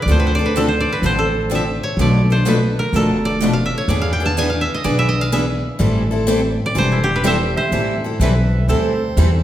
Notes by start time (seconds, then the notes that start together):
Already playing: G#4 B4 F5 G#5
0.02 D2 D5
0.09 D3 F3 C4 D4 A4 C5
0.20 B4
0.27 C5
0.35 A4 D5
0.40 C4 D4
0.46 B4
0.57 D3 F3 C4 D4 A4
0.68 C5
0.80 D5
0.92 B4
1.02 A1 D3 F3 C4 D4 A4 C5
1.19 A4
1.51 D3 F3 C4 D4 A4
1.55 E5
1.83 C#5
1.97 B1 B2 F3 A3 D4 A4 B4
2.01 D5
2.30 A3 D4 A4 C5
2.46 B2 F3 A3 D4 A4 B4
2.79 A#4
2.93 F1 B2 F3 A3 A4 B4
2.97 D4 A4
3.25 D5
3.42 B2 F3 A3 D4 A4 B4
3.53 F5
3.66 E5
3.78 C#5
3.88 E2 E3 B3 D4 G#4 B4 D5
4.02 F5
4.13 G5
4.20 B3 D4 G#4
4.26 A5
4.37 E3 B3 D4 G#4 B4 G#5
4.50 F5
4.61 E5
4.74 D#5
4.84 B1 E3 B3 D4 G#4 B4 D5
4.99 E5
5.09 D#5
5.21 F5
5.32 E3 B3 D4 G#4 B4 E5
5.79 A1 E3 G3 C4 E4 A4
6.11 C4 E4 A4
6.27 E3 G3 C4 E4 A4
6.66 D5
6.75 E1 E3 G3 C4 E4 A4 C5
6.92 E4
7.04 G4
7.16 B4
7.24 E3 G3 C4 E4 A4 C5 E5 G5
7.57 C5 E5
7.72 A1 E3 G3 C4 E4 A4
8.04 C4 E4 A4
8.20 B1 E3 G3 C4 E4 A4 B4 E5
8.68 D2 E3 G3 C4 E4 A4 C5
9.17 E2 E3 G3 C4 E4 A4